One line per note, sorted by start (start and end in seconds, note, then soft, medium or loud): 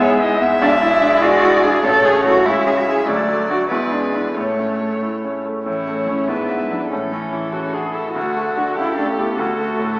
0.00 0.58 G#2 medium
0.00 0.62 G#3 medium
0.00 0.13 B3 medium
0.00 0.39 B3 medium
0.00 0.21 E4 medium
0.00 0.33 G#4 medium
0.00 0.09 C#5 medium
0.00 0.58 E5 medium
0.21 0.53 E4 medium
0.21 0.44 D#5 medium
0.41 0.62 B3 medium
0.41 1.24 E5 medium
0.62 1.81 B1 medium
0.62 1.80 G#3 medium
0.62 0.70 D4 loud
0.62 1.85 D5 medium
0.81 1.14 E4 medium
0.81 1.23 E4 loud
1.02 1.35 D4 medium
1.22 1.65 F#4 loud
1.22 1.56 G#4 medium
1.22 1.84 D5 medium
1.43 1.76 E4 medium
1.63 1.85 D4 medium
1.63 1.86 G#4 medium
1.84 2.43 A1 medium
1.84 2.44 A3 medium
1.84 2.06 A4 loud
1.84 2.45 C#5 medium
1.84 2.44 C#5 medium
2.04 2.37 C#4 medium
2.04 2.25 G#4 medium
2.25 2.44 E4 soft
2.25 2.47 F#4 medium
2.25 2.44 A4 medium
2.45 3.06 C#2 medium
2.45 3.06 G#3 medium
2.45 2.65 E4 medium
2.45 3.06 C#5 medium
2.45 3.09 E5 medium
2.66 2.99 C#4 medium
2.66 2.70 G#4 medium
2.77 2.81 F#4 medium
2.87 3.06 E4 soft
2.87 3.07 G#4 medium
2.87 3.06 G#4 soft
3.07 3.69 D2 medium
3.07 3.72 F#3 medium
3.07 3.49 A3 medium
3.07 3.70 D5 medium
3.07 3.67 D5 medium
3.29 3.62 A3 soft
3.50 3.69 D4 soft
3.50 3.58 F#4 medium
3.50 3.69 F#4 soft
3.69 4.34 E2 soft
3.69 4.35 G#3 soft
3.69 3.94 E4 medium
3.69 4.38 B4 medium
3.69 4.36 D5 soft
3.92 4.27 G#3 soft
3.92 4.04 D4 medium
4.03 4.14 C#4 medium
4.13 4.35 B3 medium
4.13 4.34 D4 soft
4.13 4.34 E4 soft
4.35 5.63 A2 soft
4.35 5.00 A3 medium
4.35 5.44 A3 soft
4.35 5.45 C#5 soft
4.35 5.35 C#5 soft
4.59 4.94 C#4 soft
4.81 5.15 A3 soft
5.03 5.37 E4 soft
5.24 5.59 C#4 soft
5.45 5.67 A3 soft
5.65 6.27 A2 soft
5.65 6.09 E3 medium
5.65 6.29 C#4 soft
5.65 6.30 E4 soft
5.65 6.29 C#5 soft
5.87 6.21 A3 soft
6.08 6.29 C#4 medium
6.08 6.27 C#4 soft
6.08 6.27 E4 soft
6.28 6.89 G#2 soft
6.28 6.51 B3 medium
6.28 6.89 D4 soft
6.28 6.90 E4 soft
6.28 6.90 B4 soft
6.49 6.59 A3 medium
6.49 6.83 B3 soft
6.60 6.64 G#3 medium
6.70 6.78 F#3 medium
6.70 6.89 D4 soft
6.70 6.90 E4 soft
6.90 8.12 A2 soft
6.90 7.92 E3 medium
6.90 6.98 C#4 soft
6.90 7.51 C#4 soft
6.90 8.12 A4 soft
7.11 7.34 C#4 soft
7.11 7.46 E4 soft
7.32 7.66 E3 soft
7.32 7.54 E4 soft
7.52 7.74 C#4 soft
7.52 7.87 E4 soft
7.52 7.75 F#4 soft
7.73 7.91 D4 soft
7.73 7.95 F#4 soft
7.73 7.96 G#4 soft
7.92 8.11 E4 soft
7.92 8.16 E4 soft
7.92 10.00 A4 soft
8.12 8.76 D2 soft
8.12 8.57 A3 medium
8.12 8.77 F#4 medium
8.12 8.76 F#4 soft
8.36 8.69 A3 soft
8.56 8.76 D4 soft
8.56 8.76 F#4 medium
8.56 8.76 F#4 soft
8.76 9.37 C#2 soft
8.76 8.96 E4 medium
8.76 9.37 G4 medium
8.76 9.39 G4 soft
8.97 9.31 A3 soft
8.97 9.09 D4 medium
9.08 9.17 C#4 medium
9.18 9.39 B3 medium
9.18 9.37 E4 soft
9.18 9.37 G4 soft
9.37 10.00 D2 medium
9.37 10.00 A3 medium
9.37 9.97 F#4 medium
9.37 10.00 A4 soft
9.59 9.92 F#4 soft
9.79 10.00 A2 soft